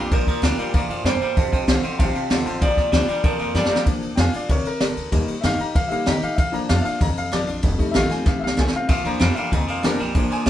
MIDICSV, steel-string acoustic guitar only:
0, 0, Header, 1, 2, 480
1, 0, Start_track
1, 0, Key_signature, -2, "major"
1, 0, Tempo, 313643
1, 170, Time_signature, 4, 2, 24, 8
1, 16068, End_track
2, 0, Start_track
2, 0, Title_t, "Steel-string acoustic guitar"
2, 0, Program_c, 0, 25
2, 0, Note_on_c, 0, 62, 52
2, 0, Note_on_c, 0, 65, 61
2, 161, Note_off_c, 0, 65, 0
2, 178, Note_off_c, 0, 62, 0
2, 178, Note_on_c, 0, 46, 90
2, 642, Note_on_c, 0, 53, 90
2, 659, Note_on_c, 0, 58, 87
2, 669, Note_on_c, 0, 62, 91
2, 680, Note_on_c, 0, 65, 97
2, 862, Note_off_c, 0, 65, 0
2, 875, Note_off_c, 0, 53, 0
2, 881, Note_on_c, 0, 65, 59
2, 884, Note_off_c, 0, 58, 0
2, 889, Note_off_c, 0, 62, 0
2, 914, Note_on_c, 0, 62, 45
2, 1084, Note_off_c, 0, 46, 0
2, 1115, Note_off_c, 0, 65, 0
2, 1130, Note_on_c, 0, 45, 88
2, 1131, Note_off_c, 0, 62, 0
2, 1585, Note_off_c, 0, 45, 0
2, 1615, Note_on_c, 0, 43, 86
2, 2067, Note_off_c, 0, 43, 0
2, 2097, Note_on_c, 0, 41, 88
2, 2570, Note_on_c, 0, 51, 86
2, 2579, Note_on_c, 0, 57, 87
2, 2595, Note_on_c, 0, 60, 91
2, 2606, Note_on_c, 0, 65, 98
2, 2791, Note_off_c, 0, 65, 0
2, 2798, Note_off_c, 0, 51, 0
2, 2803, Note_off_c, 0, 57, 0
2, 2809, Note_on_c, 0, 65, 56
2, 2811, Note_off_c, 0, 60, 0
2, 2846, Note_on_c, 0, 60, 47
2, 3003, Note_off_c, 0, 41, 0
2, 3038, Note_off_c, 0, 65, 0
2, 3056, Note_off_c, 0, 60, 0
2, 3056, Note_on_c, 0, 48, 91
2, 3522, Note_on_c, 0, 51, 86
2, 3537, Note_on_c, 0, 57, 79
2, 3551, Note_on_c, 0, 60, 90
2, 3556, Note_on_c, 0, 65, 102
2, 3743, Note_off_c, 0, 65, 0
2, 3754, Note_off_c, 0, 51, 0
2, 3761, Note_on_c, 0, 65, 60
2, 3762, Note_off_c, 0, 57, 0
2, 3768, Note_off_c, 0, 60, 0
2, 3800, Note_on_c, 0, 60, 50
2, 3962, Note_off_c, 0, 48, 0
2, 3994, Note_off_c, 0, 65, 0
2, 4006, Note_on_c, 0, 46, 92
2, 4013, Note_off_c, 0, 60, 0
2, 4476, Note_on_c, 0, 53, 81
2, 4492, Note_on_c, 0, 58, 86
2, 4504, Note_on_c, 0, 62, 91
2, 4515, Note_on_c, 0, 65, 93
2, 4697, Note_off_c, 0, 65, 0
2, 4710, Note_off_c, 0, 53, 0
2, 4715, Note_on_c, 0, 65, 57
2, 4719, Note_off_c, 0, 58, 0
2, 4725, Note_off_c, 0, 62, 0
2, 4748, Note_on_c, 0, 62, 47
2, 4917, Note_off_c, 0, 46, 0
2, 4950, Note_off_c, 0, 65, 0
2, 4958, Note_on_c, 0, 41, 91
2, 4966, Note_off_c, 0, 62, 0
2, 5428, Note_on_c, 0, 53, 80
2, 5443, Note_on_c, 0, 58, 85
2, 5451, Note_on_c, 0, 62, 95
2, 5464, Note_on_c, 0, 65, 98
2, 5650, Note_off_c, 0, 65, 0
2, 5666, Note_off_c, 0, 53, 0
2, 5669, Note_on_c, 0, 65, 58
2, 5674, Note_off_c, 0, 58, 0
2, 5678, Note_off_c, 0, 62, 0
2, 5705, Note_on_c, 0, 62, 50
2, 5872, Note_off_c, 0, 41, 0
2, 5907, Note_off_c, 0, 65, 0
2, 5917, Note_on_c, 0, 46, 83
2, 5925, Note_off_c, 0, 62, 0
2, 6388, Note_on_c, 0, 53, 85
2, 6406, Note_on_c, 0, 58, 90
2, 6414, Note_on_c, 0, 62, 89
2, 6424, Note_on_c, 0, 65, 91
2, 6611, Note_off_c, 0, 65, 0
2, 6626, Note_off_c, 0, 53, 0
2, 6630, Note_on_c, 0, 65, 60
2, 6635, Note_off_c, 0, 58, 0
2, 6639, Note_off_c, 0, 62, 0
2, 6672, Note_on_c, 0, 62, 47
2, 6832, Note_off_c, 0, 46, 0
2, 6867, Note_off_c, 0, 65, 0
2, 6879, Note_on_c, 0, 48, 92
2, 6888, Note_off_c, 0, 62, 0
2, 7337, Note_off_c, 0, 48, 0
2, 7355, Note_on_c, 0, 50, 86
2, 7815, Note_off_c, 0, 50, 0
2, 7842, Note_on_c, 0, 51, 90
2, 8298, Note_off_c, 0, 51, 0
2, 8316, Note_on_c, 0, 51, 86
2, 8327, Note_on_c, 0, 58, 88
2, 8341, Note_on_c, 0, 63, 89
2, 8349, Note_on_c, 0, 67, 100
2, 8539, Note_off_c, 0, 67, 0
2, 8550, Note_off_c, 0, 51, 0
2, 8555, Note_off_c, 0, 58, 0
2, 8557, Note_on_c, 0, 67, 57
2, 8562, Note_off_c, 0, 63, 0
2, 8588, Note_on_c, 0, 63, 44
2, 8790, Note_off_c, 0, 67, 0
2, 8806, Note_off_c, 0, 63, 0
2, 8808, Note_on_c, 0, 46, 93
2, 9275, Note_on_c, 0, 51, 89
2, 9291, Note_on_c, 0, 58, 87
2, 9296, Note_on_c, 0, 63, 91
2, 9310, Note_on_c, 0, 67, 94
2, 9502, Note_off_c, 0, 67, 0
2, 9509, Note_off_c, 0, 51, 0
2, 9517, Note_off_c, 0, 58, 0
2, 9520, Note_off_c, 0, 63, 0
2, 9521, Note_on_c, 0, 67, 59
2, 9558, Note_on_c, 0, 63, 47
2, 9718, Note_off_c, 0, 46, 0
2, 9752, Note_off_c, 0, 67, 0
2, 9768, Note_on_c, 0, 46, 87
2, 9771, Note_off_c, 0, 63, 0
2, 10242, Note_on_c, 0, 53, 83
2, 10249, Note_on_c, 0, 58, 84
2, 10263, Note_on_c, 0, 62, 95
2, 10273, Note_on_c, 0, 65, 105
2, 10468, Note_off_c, 0, 65, 0
2, 10473, Note_off_c, 0, 53, 0
2, 10477, Note_off_c, 0, 58, 0
2, 10483, Note_off_c, 0, 62, 0
2, 10486, Note_on_c, 0, 65, 57
2, 10523, Note_on_c, 0, 62, 47
2, 10677, Note_off_c, 0, 46, 0
2, 10715, Note_off_c, 0, 65, 0
2, 10729, Note_on_c, 0, 41, 92
2, 10733, Note_off_c, 0, 62, 0
2, 11197, Note_on_c, 0, 53, 84
2, 11210, Note_on_c, 0, 58, 86
2, 11220, Note_on_c, 0, 62, 81
2, 11228, Note_on_c, 0, 65, 94
2, 11414, Note_off_c, 0, 65, 0
2, 11431, Note_off_c, 0, 53, 0
2, 11432, Note_on_c, 0, 65, 57
2, 11437, Note_off_c, 0, 58, 0
2, 11442, Note_off_c, 0, 62, 0
2, 11464, Note_on_c, 0, 62, 53
2, 11638, Note_off_c, 0, 41, 0
2, 11668, Note_off_c, 0, 65, 0
2, 11674, Note_on_c, 0, 41, 92
2, 11684, Note_off_c, 0, 62, 0
2, 12151, Note_on_c, 0, 51, 86
2, 12167, Note_on_c, 0, 57, 85
2, 12177, Note_on_c, 0, 60, 95
2, 12188, Note_on_c, 0, 65, 101
2, 12371, Note_off_c, 0, 65, 0
2, 12388, Note_off_c, 0, 51, 0
2, 12389, Note_on_c, 0, 65, 62
2, 12396, Note_off_c, 0, 57, 0
2, 12401, Note_off_c, 0, 60, 0
2, 12427, Note_on_c, 0, 60, 46
2, 12591, Note_off_c, 0, 41, 0
2, 12627, Note_off_c, 0, 65, 0
2, 12639, Note_on_c, 0, 48, 90
2, 12646, Note_off_c, 0, 60, 0
2, 13112, Note_on_c, 0, 51, 83
2, 13121, Note_on_c, 0, 57, 81
2, 13135, Note_on_c, 0, 60, 89
2, 13146, Note_on_c, 0, 65, 90
2, 13339, Note_off_c, 0, 65, 0
2, 13349, Note_off_c, 0, 51, 0
2, 13354, Note_off_c, 0, 57, 0
2, 13357, Note_on_c, 0, 65, 62
2, 13360, Note_off_c, 0, 60, 0
2, 13389, Note_on_c, 0, 60, 50
2, 13554, Note_off_c, 0, 48, 0
2, 13592, Note_off_c, 0, 65, 0
2, 13601, Note_on_c, 0, 46, 89
2, 13608, Note_off_c, 0, 60, 0
2, 14072, Note_on_c, 0, 53, 84
2, 14089, Note_on_c, 0, 58, 91
2, 14100, Note_on_c, 0, 62, 89
2, 14109, Note_on_c, 0, 65, 100
2, 14307, Note_off_c, 0, 65, 0
2, 14309, Note_off_c, 0, 53, 0
2, 14318, Note_off_c, 0, 58, 0
2, 14323, Note_off_c, 0, 62, 0
2, 14325, Note_on_c, 0, 65, 57
2, 14355, Note_on_c, 0, 62, 45
2, 14516, Note_off_c, 0, 46, 0
2, 14556, Note_off_c, 0, 65, 0
2, 14571, Note_off_c, 0, 62, 0
2, 14580, Note_on_c, 0, 41, 91
2, 15046, Note_on_c, 0, 53, 86
2, 15061, Note_on_c, 0, 58, 94
2, 15070, Note_on_c, 0, 62, 90
2, 15081, Note_on_c, 0, 65, 86
2, 15274, Note_off_c, 0, 65, 0
2, 15277, Note_off_c, 0, 53, 0
2, 15285, Note_off_c, 0, 58, 0
2, 15289, Note_off_c, 0, 62, 0
2, 15292, Note_on_c, 0, 65, 66
2, 15331, Note_on_c, 0, 62, 49
2, 15486, Note_off_c, 0, 41, 0
2, 15520, Note_off_c, 0, 65, 0
2, 15530, Note_on_c, 0, 46, 89
2, 15540, Note_off_c, 0, 62, 0
2, 16006, Note_on_c, 0, 53, 91
2, 16068, Note_off_c, 0, 46, 0
2, 16068, Note_off_c, 0, 53, 0
2, 16068, End_track
0, 0, End_of_file